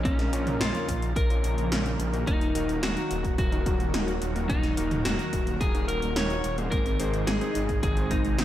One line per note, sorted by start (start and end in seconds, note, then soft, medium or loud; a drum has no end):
0.00 0.17 A#2 medium
0.00 2.23 C#3 medium
0.00 2.23 F3 medium
0.00 6.68 A#3 medium
0.00 0.17 C#4 medium
0.00 2.23 D#4 medium
0.00 0.17 F4 medium
0.00 0.17 A#4 medium
0.00 4.46 A#4 loud
0.00 0.17 C#5 medium
0.05 0.30 A#1 loud
0.05 0.62 C#4 medium
0.05 kick loud
0.05 closed hi-hat medium
0.19 snare soft
0.19 closed hi-hat soft
0.33 0.57 A#1 medium
0.33 0.71 A#2 medium
0.33 0.71 C#4 medium
0.33 0.71 F4 medium
0.33 0.71 A#4 medium
0.33 0.71 C#5 medium
0.33 closed hi-hat medium
0.47 closed hi-hat soft
0.47 mid tom medium
0.60 0.73 A#1 medium
0.60 1.12 F4 medium
0.60 snare loud
0.60 closed hi-hat medium
0.74 0.91 A#2 medium
0.74 0.90 C#4 medium
0.74 0.90 F4 medium
0.74 0.90 A#4 medium
0.74 0.91 C#5 medium
0.74 closed hi-hat soft
0.88 1.13 A#1 loud
0.88 kick medium
0.88 closed hi-hat medium
1.02 closed hi-hat soft
1.16 1.41 A#1 loud
1.16 1.96 A#4 loud
1.16 kick loud
1.16 closed hi-hat medium
1.30 1.68 A#2 medium
1.30 1.68 C#4 medium
1.30 1.68 F4 medium
1.30 1.68 A#4 medium
1.30 1.68 C#5 medium
1.30 closed hi-hat soft
1.44 1.56 A#1 medium
1.44 closed hi-hat medium
1.58 1.70 A#1 medium
1.58 closed hi-hat soft
1.71 1.96 A#1 medium
1.71 1.88 A#2 medium
1.71 1.88 C#4 medium
1.71 1.88 F4 medium
1.71 1.88 A#4 medium
1.71 1.88 C#5 loud
1.71 snare loud
1.71 closed hi-hat medium
1.86 closed hi-hat soft
1.99 2.24 A#1 medium
1.99 closed hi-hat medium
2.13 2.39 D#3 medium
2.13 2.39 A#3 medium
2.13 2.39 D#4 medium
2.13 2.39 F#4 medium
2.13 2.39 A#4 medium
2.13 closed hi-hat soft
2.27 2.52 D#1 loud
2.27 6.68 D#3 medium
2.27 6.68 F#3 medium
2.27 2.38 A#3 medium
2.27 2.83 D#4 loud
2.27 6.68 F#4 medium
2.27 kick loud
2.27 closed hi-hat medium
2.41 2.48 D#4 loud
2.41 closed hi-hat soft
2.55 2.80 D#1 medium
2.55 2.93 D#3 medium
2.55 2.93 A#3 medium
2.55 2.93 D#4 medium
2.55 2.66 F#4 medium
2.55 2.93 F#4 medium
2.55 2.93 A#4 loud
2.55 closed hi-hat medium
2.69 closed hi-hat soft
2.83 2.95 D#1 medium
2.83 2.96 A#3 medium
2.83 3.37 F#4 loud
2.83 snare loud
2.83 closed hi-hat medium
2.97 3.13 D#3 medium
2.97 3.13 A#3 medium
2.97 3.07 D#4 medium
2.97 3.13 D#4 medium
2.97 3.13 F#4 medium
2.97 3.13 A#4 medium
2.97 closed hi-hat soft
3.11 3.35 D#1 loud
3.11 3.21 F#4 medium
3.11 closed hi-hat medium
3.24 3.38 A#3 medium
3.24 kick medium
3.24 closed hi-hat soft
3.38 3.63 D#1 loud
3.38 4.18 F#4 medium
3.38 kick loud
3.38 closed hi-hat medium
3.52 3.91 D#3 medium
3.52 3.91 A#3 medium
3.52 3.91 D#4 medium
3.52 3.59 D#4 loud
3.52 3.91 F#4 medium
3.52 3.91 A#4 medium
3.52 closed hi-hat soft
3.66 3.78 D#1 medium
3.66 3.77 F#4 medium
3.66 kick loud
3.66 closed hi-hat medium
3.80 3.92 D#1 medium
3.80 3.93 A#3 medium
3.80 closed hi-hat soft
3.94 4.19 D#1 medium
3.94 4.10 D#3 medium
3.94 4.10 A#3 medium
3.94 4.07 D#4 medium
3.94 4.10 D#4 medium
3.94 4.10 F#4 medium
3.94 4.10 A#4 loud
3.94 snare loud
3.94 closed hi-hat medium
4.08 4.18 F#4 medium
4.08 closed hi-hat soft
4.22 4.46 D#1 loud
4.22 closed hi-hat medium
4.36 4.61 D#3 medium
4.36 4.61 A#3 medium
4.36 4.46 A#3 loud
4.36 4.61 D#4 medium
4.36 4.61 F#4 medium
4.36 4.61 A#4 medium
4.36 closed hi-hat soft
4.49 4.74 D#1 loud
4.49 4.60 A#3 medium
4.49 5.01 D#4 medium
4.49 6.70 A#4 loud
4.49 kick loud
4.49 closed hi-hat medium
4.63 4.70 D#4 loud
4.63 snare soft
4.63 closed hi-hat soft
4.77 5.02 D#1 medium
4.77 5.16 D#3 medium
4.77 5.16 A#3 medium
4.77 5.16 D#4 medium
4.77 5.16 F#4 medium
4.77 4.88 F#4 medium
4.77 5.16 A#4 loud
4.77 closed hi-hat medium
4.91 closed hi-hat soft
4.91 mid tom medium
5.05 5.18 D#1 medium
5.05 5.18 A#3 medium
5.05 5.62 F#4 loud
5.05 snare loud
5.05 closed hi-hat medium
5.19 5.35 D#3 medium
5.19 5.35 A#3 medium
5.19 5.35 D#4 medium
5.19 5.30 D#4 medium
5.19 5.35 F#4 medium
5.19 5.35 A#4 medium
5.19 closed hi-hat soft
5.33 5.57 D#1 medium
5.33 5.44 F#4 medium
5.33 kick medium
5.33 closed hi-hat medium
5.47 5.60 A#3 medium
5.47 closed hi-hat soft
5.61 5.85 D#1 loud
5.61 5.86 G#4 loud
5.61 kick loud
5.61 closed hi-hat medium
5.75 6.13 D#3 medium
5.75 6.13 A#3 medium
5.75 5.81 D#4 loud
5.75 6.13 D#4 medium
5.75 6.13 F#4 medium
5.75 6.13 A#4 medium
5.75 closed hi-hat soft
5.88 6.01 D#1 medium
5.88 5.99 F#4 medium
5.88 6.17 A#4 loud
5.88 closed hi-hat medium
6.02 6.15 D#1 loud
6.02 6.16 A#3 medium
6.02 closed hi-hat soft
6.16 6.41 D#1 medium
6.16 6.32 D#3 medium
6.16 6.32 A#3 medium
6.16 6.32 D#4 medium
6.16 6.29 D#4 medium
6.16 6.32 F#4 medium
6.16 6.32 A#4 medium
6.16 6.55 C#5 loud
6.16 snare loud
6.16 closed hi-hat medium
6.30 6.41 F#4 medium
6.30 closed hi-hat soft
6.44 6.69 D#1 loud
6.44 closed hi-hat medium
6.58 6.83 G#2 medium
6.58 6.69 A#3 loud
6.58 6.83 C4 medium
6.58 6.83 D#4 medium
6.58 6.83 G#4 medium
6.58 6.83 C5 medium
6.58 closed hi-hat soft
6.71 6.96 G#1 loud
6.71 8.45 C3 medium
6.71 8.45 D#3 medium
6.71 6.82 G#3 medium
6.71 8.45 G#3 medium
6.71 8.45 D#4 medium
6.71 8.45 G#4 loud
6.71 7.29 A#4 loud
6.71 kick loud
6.71 closed hi-hat medium
6.86 6.92 C4 loud
6.86 closed hi-hat soft
6.99 7.24 G#1 medium
6.99 7.38 G#2 medium
6.99 7.38 C4 medium
6.99 7.38 D#4 medium
6.99 7.10 D#4 medium
6.99 7.38 G#4 medium
6.99 7.38 C5 loud
6.99 closed hi-hat medium
7.14 closed hi-hat soft
7.27 7.40 G#1 medium
7.27 7.41 G#3 medium
7.27 7.82 G#4 loud
7.27 snare loud
7.27 closed hi-hat medium
7.41 7.57 G#2 medium
7.41 7.57 C4 medium
7.41 7.52 C4 medium
7.41 7.57 D#4 medium
7.41 7.57 G#4 medium
7.41 7.57 C5 medium
7.41 closed hi-hat soft
7.55 7.80 G#1 loud
7.55 7.66 D#4 medium
7.55 closed hi-hat medium
7.69 7.82 G#3 medium
7.69 kick medium
7.69 closed hi-hat soft
7.83 8.08 G#1 loud
7.83 8.12 G#4 loud
7.83 kick loud
7.83 closed hi-hat medium
7.97 8.35 G#2 medium
7.97 8.35 C4 medium
7.97 8.03 C4 loud
7.97 8.35 D#4 medium
7.97 8.35 G#4 medium
7.97 8.35 C5 medium
7.97 closed hi-hat soft
8.11 8.23 G#1 medium
8.11 8.21 D#4 medium
8.11 8.45 D#4 medium
8.11 kick loud
8.11 closed hi-hat medium
8.25 8.37 G#1 loud
8.25 8.38 G#3 medium
8.25 closed hi-hat soft
8.38 8.45 G#1 medium
8.38 8.45 G#2 medium
8.38 8.45 C4 medium
8.38 8.45 D#4 medium
8.38 8.45 G#4 medium
8.38 8.45 C5 medium
8.38 snare loud
8.38 closed hi-hat medium